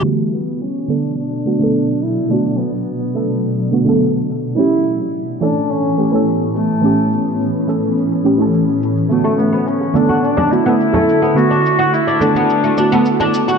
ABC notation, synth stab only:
X:1
M:4/4
L:1/16
Q:1/4=106
K:Bm
V:1 name="Synth stab"
[D,A,B,F]6 [D,A,B,A]4 [D,A,B,F] [D,A,B,A]4- [D,A,B,A] | [D,A,B,F]6 [D,A,B,A]4 [D,A,B,F] [D,A,B,A]4- [D,A,B,A] | [E,A,CG]6 [E,A,CA]4 [E,A,CG] [E,A,CA]4- [E,A,CA] | [E,A,CG]6 [E,A,CA]4 [E,A,CG] [E,A,CA]4- [E,A,CA] |
[D,A,B,F]6 [D,A,B,A]4 [D,A,B,F] [D,A,B,A]4- [D,A,B,A] | [D,A,B,F]6 [D,A,B,A]4 [D,A,B,F] [D,A,B,A]4- [D,A,B,A] |]